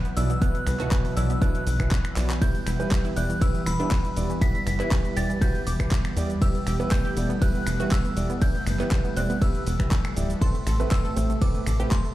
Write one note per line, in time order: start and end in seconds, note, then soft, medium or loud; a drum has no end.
0.00 10.38 E3 medium
0.00 2.38 F#3 medium
0.00 2.40 B3 medium
0.00 6.38 B3 medium
0.00 0.19 F#6 loud
0.00 2.40 B6 medium
0.05 0.12 B3 medium
0.05 closed hi-hat soft
0.05 shaker soft
0.17 0.35 B1 medium
0.17 0.29 B2 medium
0.17 0.29 F#3 medium
0.17 0.29 E4 medium
0.17 0.29 D5 medium
0.17 0.40 E6 loud
0.17 open hi-hat loud
0.17 shaker medium
0.30 0.37 B3 medium
0.30 closed hi-hat soft
0.30 shaker soft
0.42 0.54 B2 medium
0.42 0.54 F#3 medium
0.42 0.50 B3 loud
0.42 0.54 E4 medium
0.42 0.54 B4 medium
0.42 1.19 F#6 loud
0.42 kick loud
0.42 closed hi-hat loud
0.42 shaker soft
0.55 0.62 B3 medium
0.55 closed hi-hat soft
0.55 shaker soft
0.67 0.85 C2 loud
0.67 0.75 B3 medium
0.67 finger snap medium
0.67 open hi-hat loud
0.67 shaker medium
0.80 1.14 B2 medium
0.80 1.14 F#3 medium
0.80 1.14 E4 medium
0.80 0.87 F#4 loud
0.80 1.14 B4 loud
0.80 clap soft
0.80 closed hi-hat soft
0.80 shaker soft
0.91 1.00 B3 medium
0.91 kick loud
0.91 clap loud
0.91 closed hi-hat medium
0.91 shaker soft
1.05 1.12 B3 medium
1.05 open hi-hat medium
1.05 shaker soft
1.17 1.35 B1 medium
1.17 1.29 B2 medium
1.17 1.29 F#3 medium
1.17 1.25 E4 medium
1.17 1.29 E4 medium
1.17 1.29 D5 medium
1.17 1.40 E6 medium
1.17 open hi-hat loud
1.17 shaker medium
1.30 1.37 B3 medium
1.30 closed hi-hat soft
1.30 shaker soft
1.42 1.60 B2 loud
1.42 1.60 F#3 medium
1.42 2.32 D4 loud
1.42 1.60 E4 medium
1.42 1.60 B4 loud
1.42 2.13 F#6 medium
1.42 kick loud
1.42 closed hi-hat medium
1.42 shaker soft
1.55 closed hi-hat soft
1.55 shaker soft
1.67 1.85 B1 medium
1.67 open hi-hat loud
1.67 shaker medium
1.80 1.91 B2 medium
1.80 1.91 F#3 medium
1.80 1.91 E4 medium
1.80 1.91 B4 loud
1.80 finger snap medium
1.80 kick medium
1.80 closed hi-hat soft
1.80 shaker soft
1.91 kick loud
1.91 clap loud
1.91 closed hi-hat loud
1.91 shaker soft
2.05 finger snap medium
2.05 closed hi-hat soft
2.05 shaker soft
2.17 2.35 B1 medium
2.17 2.29 F#3 medium
2.17 2.29 E4 medium
2.17 2.29 D5 medium
2.17 clap medium
2.17 open hi-hat loud
2.17 shaker medium
2.30 clap loud
2.30 closed hi-hat soft
2.30 shaker soft
2.41 2.54 G3 medium
2.41 10.38 G3 medium
2.41 12.14 B3 medium
2.41 2.54 E4 medium
2.41 2.50 E4 loud
2.41 2.54 B4 medium
2.41 3.13 G6 loud
2.41 12.14 B6 medium
2.41 kick loud
2.41 closed hi-hat loud
2.41 ride medium
2.41 shaker soft
2.55 2.62 E3 medium
2.55 closed hi-hat soft
2.55 shaker soft
2.66 2.85 E1 loud
2.66 2.75 E4 medium
2.66 finger snap medium
2.66 open hi-hat loud
2.66 shaker medium
2.80 2.87 E3 medium
2.80 3.14 G3 medium
2.80 3.14 E4 medium
2.80 3.14 B4 loud
2.80 closed hi-hat soft
2.80 shaker soft
2.91 3.00 E3 medium
2.91 kick loud
2.91 clap loud
2.91 closed hi-hat loud
2.91 ride medium
2.91 shaker soft
3.05 3.12 E4 medium
3.05 closed hi-hat soft
3.05 shaker soft
3.16 3.35 E1 loud
3.16 3.25 E3 medium
3.16 3.29 G3 medium
3.16 3.29 E4 medium
3.16 3.29 D5 medium
3.16 3.40 F#6 loud
3.16 open hi-hat loud
3.16 shaker medium
3.30 3.37 E3 medium
3.30 closed hi-hat soft
3.30 shaker soft
3.41 3.60 G3 loud
3.41 3.50 E4 loud
3.41 3.60 E4 medium
3.41 3.60 B4 loud
3.41 3.67 E6 loud
3.41 kick loud
3.41 closed hi-hat medium
3.41 ride medium
3.41 shaker soft
3.55 3.62 E3 medium
3.55 closed hi-hat soft
3.55 shaker soft
3.66 3.85 E1 medium
3.66 3.75 E3 medium
3.66 4.13 B5 medium
3.66 finger snap medium
3.66 open hi-hat loud
3.66 shaker medium
3.80 3.91 G3 medium
3.80 3.87 D4 medium
3.80 3.91 E4 medium
3.80 3.91 B4 medium
3.80 closed hi-hat soft
3.80 shaker soft
3.91 4.00 E3 medium
3.91 kick loud
3.91 clap loud
3.91 closed hi-hat loud
3.91 ride medium
3.91 shaker soft
4.05 4.12 E3 medium
4.05 closed hi-hat soft
4.05 shaker soft
4.17 4.35 E1 medium
4.17 4.29 G3 medium
4.17 4.29 E4 medium
4.17 4.29 D5 medium
4.17 open hi-hat loud
4.17 shaker medium
4.30 4.37 E3 medium
4.30 closed hi-hat soft
4.30 shaker soft
4.41 4.54 G3 medium
4.41 4.50 B3 loud
4.41 4.54 E4 medium
4.41 4.54 B4 medium
4.41 5.13 B6 loud
4.41 kick loud
4.41 closed hi-hat loud
4.41 ride medium
4.41 shaker soft
4.55 4.62 E3 medium
4.55 closed hi-hat soft
4.55 shaker soft
4.66 4.85 F#1 loud
4.66 4.75 E3 medium
4.66 finger snap medium
4.66 open hi-hat loud
4.66 shaker medium
4.80 5.14 G3 medium
4.80 4.87 E4 loud
4.80 5.14 E4 medium
4.80 5.14 B4 loud
4.80 clap soft
4.80 closed hi-hat soft
4.80 shaker soft
4.91 5.00 E3 medium
4.91 kick loud
4.91 clap loud
4.91 closed hi-hat medium
4.91 ride medium
4.91 shaker soft
5.05 5.12 E3 medium
5.05 closed hi-hat soft
5.05 shaker soft
5.17 5.35 E1 loud
5.17 5.29 G3 medium
5.17 5.29 E4 medium
5.17 5.25 G4 medium
5.17 5.29 D5 medium
5.17 5.42 A6 loud
5.17 open hi-hat loud
5.17 shaker medium
5.30 5.37 E3 medium
5.30 closed hi-hat soft
5.30 shaker soft
5.42 5.60 G3 loud
5.42 5.60 E4 medium
5.42 6.32 F#4 loud
5.42 5.60 B4 loud
5.42 5.65 G6 loud
5.42 kick loud
5.42 closed hi-hat loud
5.42 ride medium
5.42 shaker soft
5.55 closed hi-hat soft
5.55 shaker soft
5.67 5.85 E1 medium
5.67 6.13 D6 medium
5.67 open hi-hat loud
5.67 shaker medium
5.80 5.91 G3 medium
5.80 5.91 E4 medium
5.80 5.91 B4 loud
5.80 finger snap medium
5.80 kick medium
5.80 shaker soft
5.91 kick loud
5.91 clap loud
5.91 closed hi-hat medium
5.91 ride medium
5.91 shaker soft
6.05 finger snap medium
6.05 closed hi-hat soft
6.05 shaker soft
6.17 6.35 E2 medium
6.17 6.29 G3 medium
6.17 6.29 E4 medium
6.17 6.29 D5 medium
6.17 open hi-hat loud
6.17 shaker medium
6.30 closed hi-hat soft
6.30 shaker soft
6.42 6.54 G3 medium
6.42 12.14 A3 medium
6.42 6.54 E4 medium
6.42 6.50 G4 loud
6.42 6.54 B4 medium
6.42 6.88 E6 loud
6.42 kick loud
6.42 closed hi-hat medium
6.42 ride medium
6.42 shaker soft
6.55 6.62 B3 medium
6.55 closed hi-hat soft
6.55 shaker soft
6.67 6.85 E1 loud
6.67 6.75 G4 medium
6.67 finger snap medium
6.67 open hi-hat loud
6.67 shaker medium
6.80 7.14 G3 medium
6.80 6.87 B3 medium
6.80 7.14 E4 medium
6.80 7.14 B4 loud
6.80 closed hi-hat soft
6.80 shaker soft
6.91 7.00 B3 medium
6.91 7.43 G6 loud
6.91 kick loud
6.91 clap loud
6.91 closed hi-hat medium
6.91 ride medium
6.91 shaker soft
7.05 7.12 G4 medium
7.05 closed hi-hat soft
7.05 shaker soft
7.17 7.35 E1 loud
7.17 7.29 G3 medium
7.17 7.25 B3 medium
7.17 7.29 E4 medium
7.17 7.29 D5 medium
7.17 open hi-hat loud
7.17 shaker medium
7.30 7.37 B3 medium
7.30 closed hi-hat soft
7.30 shaker soft
7.42 7.60 G3 loud
7.42 7.60 E4 medium
7.42 7.50 G4 loud
7.42 7.60 B4 loud
7.42 7.93 F#6 loud
7.42 kick loud
7.42 closed hi-hat medium
7.42 ride medium
7.42 shaker soft
7.55 7.62 B3 medium
7.55 closed hi-hat soft
7.55 shaker soft
7.67 7.85 E1 medium
7.67 7.75 B3 medium
7.67 finger snap medium
7.67 open hi-hat loud
7.67 shaker medium
7.80 7.91 G3 medium
7.80 7.91 E4 medium
7.80 7.87 F#4 medium
7.80 7.91 B4 loud
7.80 closed hi-hat soft
7.80 shaker soft
7.91 8.00 B3 medium
7.91 8.27 E6 loud
7.91 kick loud
7.91 clap loud
7.91 closed hi-hat medium
7.91 ride medium
7.91 shaker soft
8.05 8.12 B3 medium
8.05 closed hi-hat soft
8.05 shaker soft
8.17 8.35 E1 medium
8.17 8.29 G3 medium
8.17 8.29 E4 medium
8.17 8.29 D5 medium
8.17 open hi-hat loud
8.17 shaker medium
8.30 8.37 B3 medium
8.30 closed hi-hat soft
8.30 shaker soft
8.42 8.54 G3 medium
8.42 8.50 D4 medium
8.42 8.54 E4 medium
8.42 8.54 B4 medium
8.42 9.13 G6 loud
8.42 kick loud
8.42 closed hi-hat medium
8.42 ride medium
8.42 shaker soft
8.55 8.62 B3 medium
8.55 closed hi-hat soft
8.55 shaker soft
8.66 8.85 F#1 loud
8.66 8.75 B3 medium
8.66 finger snap medium
8.66 open hi-hat loud
8.66 shaker medium
8.80 9.14 G3 medium
8.80 8.87 B3 loud
8.80 9.14 E4 medium
8.80 9.14 B4 loud
8.80 clap soft
8.80 closed hi-hat soft
8.80 shaker soft
8.91 kick loud
8.91 clap loud
8.91 closed hi-hat medium
8.91 ride medium
8.91 shaker soft
9.05 9.12 B3 medium
9.05 closed hi-hat soft
9.05 shaker soft
9.16 9.35 E1 medium
9.16 9.29 G3 medium
9.16 9.25 C4 medium
9.16 9.29 E4 medium
9.16 9.29 D5 medium
9.16 9.42 F#6 medium
9.16 open hi-hat loud
9.16 shaker medium
9.30 9.37 B3 medium
9.30 closed hi-hat soft
9.30 shaker soft
9.41 9.60 G3 loud
9.41 10.32 B3 loud
9.41 9.60 E4 medium
9.41 9.60 B4 loud
9.41 10.13 E6 medium
9.41 kick loud
9.41 closed hi-hat medium
9.41 ride medium
9.41 shaker soft
9.55 closed hi-hat soft
9.55 shaker soft
9.67 9.85 E1 medium
9.67 open hi-hat loud
9.67 shaker medium
9.80 9.91 G3 medium
9.80 9.91 E4 medium
9.80 9.91 B4 loud
9.80 finger snap medium
9.80 kick medium
9.80 closed hi-hat soft
9.80 shaker soft
9.91 kick loud
9.91 clap loud
9.91 closed hi-hat medium
9.91 ride medium
9.91 shaker soft
10.05 finger snap medium
10.05 closed hi-hat soft
10.05 shaker soft
10.17 10.35 D1 loud
10.17 10.29 G3 medium
10.17 10.29 E4 medium
10.17 10.29 D5 medium
10.17 open hi-hat loud
10.17 shaker medium
10.30 closed hi-hat soft
10.30 shaker soft
10.41 10.54 A2 medium
10.41 12.14 C3 medium
10.41 10.54 A3 medium
10.41 10.54 C4 medium
10.41 10.50 A4 loud
10.41 10.54 B4 medium
10.41 10.88 C6 medium
10.41 kick loud
10.41 closed hi-hat medium
10.41 ride medium
10.41 shaker soft
10.55 10.62 A3 medium
10.55 closed hi-hat soft
10.55 shaker soft
10.66 10.85 A1 loud
10.66 10.75 A4 medium
10.66 finger snap medium
10.66 open hi-hat loud
10.66 shaker medium
10.80 11.14 A2 medium
10.80 11.14 A3 medium
10.80 10.87 A3 medium
10.80 11.14 C4 medium
10.80 11.14 B4 loud
10.80 closed hi-hat soft
10.80 shaker soft
10.91 11.00 A3 medium
10.91 11.43 E6 loud
10.91 kick loud
10.91 clap loud
10.91 closed hi-hat medium
10.91 ride medium
10.91 shaker soft
11.05 11.12 A4 medium
11.05 closed hi-hat soft
11.05 shaker soft
11.16 11.35 A1 loud
11.16 11.29 A2 medium
11.16 11.29 A3 medium
11.16 11.25 A3 medium
11.16 11.29 C4 medium
11.16 11.29 C5 medium
11.16 open hi-hat loud
11.16 shaker medium
11.30 11.37 A3 medium
11.30 closed hi-hat soft
11.30 shaker soft
11.41 11.60 A2 loud
11.41 11.60 A3 medium
11.41 11.60 C4 medium
11.41 11.50 A4 loud
11.41 11.60 B4 loud
11.41 11.93 D6 loud
11.41 kick loud
11.41 closed hi-hat medium
11.41 ride medium
11.41 shaker soft
11.55 11.62 A3 medium
11.55 closed hi-hat soft
11.55 shaker soft
11.66 11.85 A1 medium
11.66 11.75 A3 medium
11.66 finger snap medium
11.66 open hi-hat loud
11.66 shaker medium
11.80 11.91 A2 medium
11.80 11.90 A3 medium
11.80 11.90 C4 medium
11.80 11.87 G4 loud
11.80 11.90 B4 loud
11.80 closed hi-hat soft
11.80 shaker soft
11.91 12.00 A3 medium
11.91 12.14 C6 medium
11.91 kick loud
11.91 clap loud
11.91 closed hi-hat medium
11.91 ride medium
11.91 shaker soft
12.05 12.12 A3 medium
12.05 closed hi-hat soft
12.05 shaker soft